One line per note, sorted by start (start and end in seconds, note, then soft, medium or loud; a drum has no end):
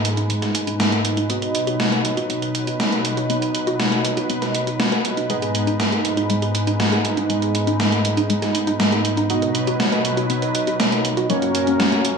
0.00 1.26 G#2 medium
0.00 1.26 G#3 medium
0.00 1.27 B3 medium
0.00 1.26 D#4 medium
0.00 1.27 D#4 medium
0.00 1.27 G#4 medium
0.00 9.26 B4 medium
0.00 1.27 D#5 medium
0.05 closed hi-hat medium
0.17 0.22 D#4 medium
0.17 closed hi-hat soft
0.30 0.38 G#3 medium
0.30 closed hi-hat medium
0.42 0.50 G#4 medium
0.42 snare soft
0.42 closed hi-hat soft
0.55 closed hi-hat medium
0.67 0.72 D#4 loud
0.67 closed hi-hat soft
0.80 0.88 G#3 medium
0.80 snare loud
0.80 closed hi-hat medium
0.92 1.00 G#4 medium
0.92 closed hi-hat soft
1.05 closed hi-hat medium
1.17 1.22 D#4 loud
1.17 closed hi-hat soft
1.30 5.26 B2 medium
1.30 5.26 F#3 medium
1.30 5.27 B3 medium
1.30 1.38 B3 medium
1.30 5.27 D#4 medium
1.30 5.26 D#4 medium
1.30 5.27 F#4 medium
1.30 5.27 D#5 medium
1.30 closed hi-hat medium
1.42 1.50 B4 medium
1.42 closed hi-hat soft
1.55 closed hi-hat medium
1.67 1.72 F#4 loud
1.67 closed hi-hat soft
1.80 1.87 B3 medium
1.80 snare loud
1.80 closed hi-hat medium
1.92 2.00 B4 medium
1.92 closed hi-hat soft
2.05 closed hi-hat medium
2.17 2.22 F#4 loud
2.17 closed hi-hat soft
2.30 2.37 B3 medium
2.30 closed hi-hat medium
2.42 2.50 B4 medium
2.42 closed hi-hat soft
2.55 closed hi-hat medium
2.67 2.72 F#4 medium
2.67 closed hi-hat soft
2.80 2.87 B3 medium
2.80 snare loud
2.80 closed hi-hat medium
2.92 3.00 B4 medium
2.92 closed hi-hat soft
3.05 closed hi-hat medium
3.17 3.22 F#4 loud
3.17 closed hi-hat soft
3.30 3.37 B3 medium
3.30 closed hi-hat medium
3.42 3.50 B4 medium
3.42 closed hi-hat soft
3.55 closed hi-hat medium
3.67 3.72 F#4 loud
3.67 closed hi-hat soft
3.80 3.87 B3 medium
3.80 snare loud
3.80 closed hi-hat medium
3.92 4.00 B4 medium
3.92 closed hi-hat soft
4.05 closed hi-hat medium
4.17 4.22 F#4 loud
4.17 closed hi-hat soft
4.30 4.37 B3 medium
4.30 closed hi-hat medium
4.42 4.50 B4 medium
4.42 snare soft
4.42 closed hi-hat soft
4.55 closed hi-hat medium
4.67 4.75 F#4 medium
4.67 closed hi-hat soft
4.80 4.87 B3 loud
4.80 snare loud
4.80 closed hi-hat medium
4.92 5.00 B4 loud
4.92 closed hi-hat soft
5.05 closed hi-hat medium
5.17 5.29 D#4 medium
5.17 closed hi-hat soft
5.30 9.26 G#2 medium
5.30 5.37 G#3 medium
5.30 9.26 G#3 medium
5.30 9.27 B3 medium
5.30 9.27 D#4 medium
5.30 11.26 D#4 medium
5.30 9.27 G#4 medium
5.30 9.27 D#5 medium
5.30 closed hi-hat medium
5.42 5.50 G#4 medium
5.42 closed hi-hat soft
5.55 closed hi-hat medium
5.67 5.72 D#4 loud
5.67 closed hi-hat soft
5.80 5.87 G#3 medium
5.80 snare loud
5.80 closed hi-hat medium
5.92 6.00 G#4 medium
5.92 closed hi-hat soft
6.05 closed hi-hat medium
6.17 6.22 D#4 medium
6.17 closed hi-hat soft
6.30 6.38 G#3 medium
6.30 closed hi-hat medium
6.42 6.50 G#4 medium
6.42 closed hi-hat soft
6.55 closed hi-hat medium
6.67 6.72 D#4 loud
6.67 closed hi-hat soft
6.80 6.88 G#3 medium
6.80 snare loud
6.80 closed hi-hat medium
6.92 7.00 G#4 medium
6.92 closed hi-hat soft
7.05 closed hi-hat medium
7.17 7.22 D#4 medium
7.17 closed hi-hat soft
7.30 7.37 G#3 medium
7.30 closed hi-hat medium
7.42 7.50 G#4 medium
7.42 closed hi-hat soft
7.55 closed hi-hat medium
7.67 7.72 D#4 loud
7.67 closed hi-hat soft
7.80 7.87 G#3 medium
7.80 snare loud
7.80 closed hi-hat medium
7.92 8.00 G#4 medium
7.92 closed hi-hat soft
8.05 closed hi-hat medium
8.17 8.22 D#4 loud
8.17 closed hi-hat soft
8.30 8.37 G#3 medium
8.30 closed hi-hat medium
8.42 8.50 G#4 medium
8.42 snare soft
8.42 closed hi-hat soft
8.55 closed hi-hat medium
8.67 8.72 D#4 loud
8.67 closed hi-hat soft
8.80 8.88 G#3 medium
8.80 snare loud
8.80 closed hi-hat medium
8.92 9.00 G#4 medium
8.92 closed hi-hat soft
9.05 closed hi-hat medium
9.17 9.22 D#4 loud
9.17 closed hi-hat soft
9.30 11.28 B2 medium
9.30 12.18 F#3 medium
9.30 11.27 B3 medium
9.30 9.38 B3 medium
9.30 11.27 D#4 medium
9.30 11.27 F#4 medium
9.30 11.28 B4 medium
9.30 11.27 D#5 medium
9.30 closed hi-hat medium
9.42 9.50 B4 medium
9.42 closed hi-hat soft
9.55 closed hi-hat medium
9.67 9.72 F#4 loud
9.67 closed hi-hat soft
9.80 9.88 B3 medium
9.80 snare loud
9.80 closed hi-hat medium
9.92 10.00 B4 medium
9.92 closed hi-hat soft
10.05 closed hi-hat medium
10.17 10.22 F#4 loud
10.17 closed hi-hat soft
10.30 10.38 B3 medium
10.30 closed hi-hat medium
10.42 10.50 B4 medium
10.42 closed hi-hat soft
10.55 closed hi-hat medium
10.67 10.72 F#4 medium
10.67 closed hi-hat soft
10.80 10.87 B3 medium
10.80 snare loud
10.80 closed hi-hat medium
10.92 11.00 B4 medium
10.92 closed hi-hat soft
11.05 closed hi-hat medium
11.17 11.22 F#4 loud
11.17 closed hi-hat soft
11.30 12.18 F#2 medium
11.30 11.37 F#3 medium
11.30 12.18 A#3 medium
11.30 12.18 C#4 medium
11.30 12.18 F#4 medium
11.30 12.18 A#4 medium
11.30 12.18 C#5 medium
11.30 closed hi-hat medium
11.42 11.50 F#4 medium
11.42 closed hi-hat soft
11.55 closed hi-hat medium
11.67 11.72 C#4 loud
11.67 closed hi-hat soft
11.80 11.87 F#3 medium
11.80 snare loud
11.80 closed hi-hat medium
11.92 12.00 F#4 medium
11.92 closed hi-hat soft
12.05 closed hi-hat medium